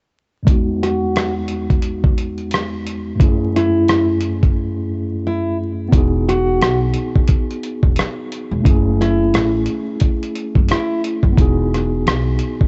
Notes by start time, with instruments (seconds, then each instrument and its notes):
0.43 tine electric piano E2 G#3
0.47 tine electric piano B3 D#4, kick, closed hi-hat
0.52 tine electric piano F#4
0.83 nylon-string guitar F#4, cross-stick, closed hi-hat
1.16 cross-stick, closed hi-hat
1.48 closed hi-hat
1.70 kick, closed hi-hat
1.82 closed hi-hat
2.04 kick
2.18 closed hi-hat
2.38 closed hi-hat
2.51 cross-stick, closed hi-hat
2.86 closed hi-hat
3.15 tine electric piano F#2 A3
3.20 tine electric piano C#4 E4, kick, closed hi-hat
3.24 tine electric piano G#4
3.56 nylon-string guitar E4, cross-stick, closed hi-hat
3.88 cross-stick, closed hi-hat
4.20 closed hi-hat
4.43 kick, closed hi-hat
5.27 nylon-string guitar E4
5.88 tine electric piano B3 D#4, kick
5.93 upright bass E1, tine electric piano F#4, closed hi-hat
5.97 tine electric piano G#4
6.29 nylon-string guitar F#4, cross-stick, closed hi-hat
6.61 upright bass B1, cross-stick, closed hi-hat
6.94 closed hi-hat
7.16 kick
7.28 kick, closed hi-hat
7.51 closed hi-hat
7.64 closed hi-hat
7.83 upright bass E1, kick
7.96 cross-stick, closed hi-hat
8.32 closed hi-hat
8.51 upright bass E1
8.61 tine electric piano A3 C#4
8.65 upright bass F#1, tine electric piano E4, kick, closed hi-hat
8.70 tine electric piano G#4
9.01 nylon-string guitar E4, cross-stick, closed hi-hat
9.34 upright bass A1, cross-stick, closed hi-hat
9.66 closed hi-hat
10.00 kick, closed hi-hat
10.23 closed hi-hat
10.36 closed hi-hat
10.55 upright bass F#1, kick
10.69 nylon-string guitar E4, cross-stick, closed hi-hat
11.04 closed hi-hat
11.23 upright bass F#1, kick
11.33 tine electric piano B3 D#4
11.38 upright bass E1, tine electric piano F#4 G#4, kick, closed hi-hat
11.74 cross-stick, closed hi-hat
12.06 upright bass B1, cross-stick, closed hi-hat
12.39 closed hi-hat
12.61 kick